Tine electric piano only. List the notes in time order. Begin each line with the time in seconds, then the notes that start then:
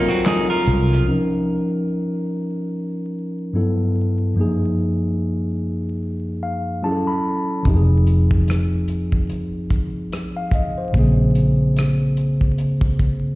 Already playing: F#3 C4 F4 A4 A#4
1.05 F3 C#4
1.09 D#4 A#4
3.53 G2 F#3 B3 E4 A4
4.34 F#2 F3 A#3
4.39 D#4 G#4
6.43 F5
6.83 F#3 C#4 E4 G#4 A5
6.92 A4
7.07 B5
7.63 F3 C4
7.68 D#4 G4
7.76 G#4
10.37 F5
10.55 D#5
10.78 C5
10.92 C#3 A#3
10.97 C4 G#4